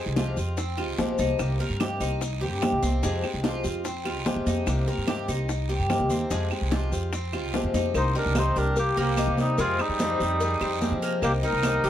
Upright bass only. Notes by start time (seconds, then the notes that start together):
0.06 C2
0.37 F2
0.88 C2
0.98 A#1
1.19 C2
1.39 C2
1.70 G2
2.00 C2
2.52 G2
2.72 C2
2.83 C2
3.03 F2
3.34 C2
3.65 F2
4.16 C2
4.36 F2
4.46 F2
4.67 C2
4.98 G2
5.28 C2
5.79 G2
6.00 C2
6.10 D#2
6.31 F2
6.61 C2
6.92 F2
7.43 C2
7.64 F2
7.74 F2
7.94 C2
8.26 C2
8.56 C2
8.97 C2
9.27 C3
9.58 F2
9.89 F2
10.20 F2
10.61 F2
10.91 F3
11.22 C2
11.53 C2
11.84 C2